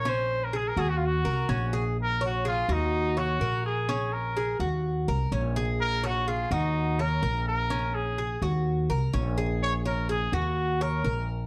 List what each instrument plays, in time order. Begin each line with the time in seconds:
Already playing: upright bass A#1, trumpet C#5
0.05 cuban tres C#4, trumpet C5
0.44 trumpet A#4
0.53 cuban tres G#4, trumpet G#4
0.68 trumpet A#4
0.77 upright bass D#2, cuban tres F#4, trumpet G#4
0.89 trumpet F#4
0.97 trumpet F4
1.06 trumpet F#4
1.25 upright bass C2, cuban tres A#4
1.49 upright bass A#1, cuban tres C#4
1.73 cuban tres G#4
2.01 trumpet A#4
2.21 cuban tres C#5
2.25 trumpet F#4
2.45 trumpet F4, cuban tres G#4
2.69 upright bass D#2, trumpet D#4, cuban tres F#4
3.17 trumpet F#4, cuban tres C#5
3.40 upright bass A#1, cuban tres A#4
3.66 trumpet G#4
3.89 cuban tres C#4
4.13 trumpet A#4
4.37 cuban tres G#4
4.59 upright bass D#2, cuban tres F#4
5.08 upright bass C2, cuban tres A#4
5.32 upright bass A#1, cuban tres C#4
5.56 cuban tres G#4
5.81 trumpet A#4
6.03 trumpet F#4, cuban tres C#5
6.28 trumpet F4, cuban tres G#4
6.51 upright bass D#2, trumpet D#4, cuban tres F#4
6.99 trumpet A#4, cuban tres C#5
7.22 upright bass A#1, cuban tres A#4
7.48 trumpet A#4
7.70 cuban tres C#4
7.95 trumpet G#4
8.18 cuban tres G#4
8.42 upright bass D#2, cuban tres F#4
8.90 upright bass C2, cuban tres A#4
9.13 upright bass A#1, cuban tres C#4
9.38 cuban tres G#4
9.63 trumpet C#5
9.85 trumpet A#4, cuban tres C#5
10.09 cuban tres G#4, trumpet G#4
10.32 upright bass D#2, cuban tres F#4, trumpet F#4
10.81 trumpet A#4, cuban tres C#5
11.04 upright bass A#1, cuban tres A#4